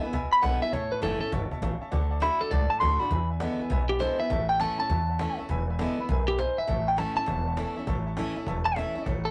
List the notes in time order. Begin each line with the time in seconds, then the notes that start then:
Already playing: E2
0.03 B3 E4 B4 E5 G#5
0.13 C#2 B2 B4 E5 G#5, cajon bass
0.32 B4 E5 G#5 B5, muted upright bass stroke
0.42 B1 D3 G#3 B3 E4 B4 E5 F#5 G#5, cajon slap
0.61 B3 E4 B4 E5 G#5
0.72 A1 A2 C#5 E5 A5, cajon bass
0.92 B4 C#5 E5 A5, muted upright bass stroke, cajon slap
1.02 F#1 E3 A3 C#4 E4 A4 C#5 E5 A5, cajon slap
1.20 C#4 E4 A4 C#5 E5 A5, muted upright bass stroke, cajon slap
1.32 G1 B2 C#5 E5 A5, cajon bass
1.51 C#5 E5 A5, muted upright bass stroke, cajon bass
1.62 A1 C#3 C#5 E5 A5, cajon slap
1.81 C#5 E5 A5, muted upright bass stroke, cajon slap
1.91 D2 D3 D5 F#5 A5, cajon bass
2.10 D5 F#5 A5
2.20 D3 A3 D4 E4 F#4 F#5, cajon slap
2.40 A4 D5 F#5 A5, muted upright bass stroke
2.51 C#2 A2 D5 F#5 A5, cajon bass
2.70 D5 F#5 A5, muted upright bass stroke
2.80 D2 D3 A3 D4 F#4 D5 F#5 A5 C6, cajon slap
2.99 D4 F#4 D5 F#5 A5 B5, muted upright bass stroke
3.11 E2 B4 E5 G#5, cajon bass
3.30 B4 E5 G#5
3.40 D3 G#3 B3 E4 B4 E5 F#5, cajon slap
3.59 B3 E4 B4 E5 G#5, muted upright bass stroke
3.70 B1 B2 B4 E5 G#5, cajon bass
3.89 G4 B4 E5 B5
3.99 D3 G#3 B3 E4 B4 C5 E5 G#5, cajon slap
4.19 B3 E4 B4 E5 G#5, muted upright bass stroke
4.30 A1 A2 C#5 E5 A5, cajon bass
4.49 C#5 E5 G5 A5
4.60 E3 A3 C#4 E4 C#5 E5 A5, cajon slap
4.78 C#4 E4 C#5 E5 A5, muted upright bass stroke
4.90 E2 C#5 E5 A5, cajon bass
5.09 C#5 E5 F#5
5.19 E3 A3 C#4 E4 C#5 E5 A5, cajon slap
5.38 C#4 E4 C#5 E5 A5, muted upright bass stroke
5.49 E1 E2 B4 E5 G#5, cajon bass
5.69 B4 E5 G#5
5.79 D3 G#3 B3 E4 B4 E5 G#5, cajon slap
5.97 B3 E4 B4 E5 B5, muted upright bass stroke
6.09 B1 F#2 B4 E5 G#5, cajon bass
6.28 G4 B4 E5 B5
6.39 G#2 B4 C5 E5 G#5, cajon slap
6.58 B4 E5 G#5, muted upright bass stroke
6.67 A1 A2 C#5 E5 A5, cajon bass
6.87 C#5 E5 F#5 G5
6.97 E3 A3 C#4 E4 C#5 E5 A5, cajon slap
7.15 C#4 E4 C#5 E5 A5, muted upright bass stroke
7.26 E1 E2 C#5 E5 A5, cajon bass
7.46 C#5 E5 A5
7.57 E3 A3 C#4 E4 C#5 E5 A5, cajon slap
7.76 C#4 E4 C#5 E5 A5, muted upright bass stroke
7.87 A1 A2 C#5 E5 A5, cajon bass
8.06 C#5 E5 A5
8.17 E3 A3 C#4 E4 C#5 E5 A5, cajon slap
8.36 C#4 E4 C#5 E5 A5, muted upright bass stroke
8.47 E1 E2 C#5 E5 A5, cajon bass
8.65 C#5 E5 F#5 A5
8.76 E3 A3 C#4 E4 C#5 E5 A5, cajon slap
8.95 C#4 E4 C#5 E5 A5, muted upright bass stroke
9.06 A1 A2 C#5 E5 A5, cajon bass
9.25 A4 C#5 E5 A5